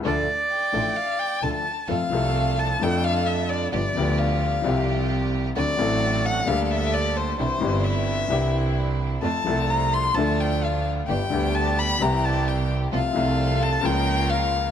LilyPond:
<<
  \new Staff \with { instrumentName = "Violin" } { \time 4/4 \key d \minor \tempo 4 = 130 r4 g''4 f''8 g''8 a''16 a''8. | \key f \major f''4. a''8 g''8 f''8 e''8 d''8 | d''4 f''2 r4 | d''4. fis''8 f''16. f''32 e''8 d''8 c''8 |
c''4 e''2 r4 | a''4 bes''8 c'''8 a''8 g''8 f''8 r8 | g''4 a''8 b''8 bes''8 a''8 g''8 r8 | f''4. a''8 g''4 f''4 | }
  \new Staff \with { instrumentName = "Bandoneon" } { \time 4/4 \key d \minor d''2. r4 | \key f \major r1 | r1 | r1 |
r1 | r1 | r1 | r1 | }
  \new Staff \with { instrumentName = "String section" } { \time 4/4 \key d \minor <d' f' a'>8 r4 <d' f' a'>8 r4 <d' f' a'>8 r8 | \key f \major <c' f' a'>8 <c' f' a'>4. <d' f' a'>2 | <b f' g'>8 <b f' g'>4. <c' f' g'>2 | <c' d' fis'>8 <c' d' fis'>4. <bes g' a'>2 |
<c' d' e'>8 <c' d' e'>4. <c' d' e'>2 | <a c' f'>8 <a c' f'>4. <a d' f'>2 | <b d' g'>8 <b d' g'>4. <c' e' g'>2 | <c' f' a'>8 <c' f' a'>4. <des' f' bes'>2 | }
  \new Staff \with { instrumentName = "Upright piano" } { \clef bass \time 4/4 \key d \minor <d, d f a d' a'>8 r4 <a,, a, f a d' a'>8 r4 <d, d f a d' a'>8 r8 | \key f \major <f, f a c' a'>8 <c, c f a c' a'>4. <f, f a d' a'>2 | <g,, g, f b d' g'>8 <d, d f b d' g'>4. <c, c f g c' g'>2 | <d, d fis c' d' a'>8 <a,, a, fis c' d' a'>4. <d, d g bes d' a'>2 |
<c, c e c' d' g'>8 <g,, g, e c' d' g'>4. <c, c e c' d' g'>2 | <f, f a c' a'>8 <c, c f a c' a'>4. <d, d f a d' a'>2 | <g,, g, d g b g'>8 <d, d g b g'>4. <c, c e g c' g'>2 | <c, c f a f'>8 <c, c f a f'>4. <des, des f bes f'>2 | }
  \new Staff \with { instrumentName = "Double bass" } { \clef bass \time 4/4 \key d \minor d,8 r4 a,,8 r4 d,8 r8 | \key f \major f,8 c,4. f,2 | g,,8 d,4. c,2 | d,8 a,,4. d,2 |
c,8 g,,4. c,2 | f,8 c,4. d,2 | g,,8 d,4. c,2 | c,8 c,4. des,2 | }
>>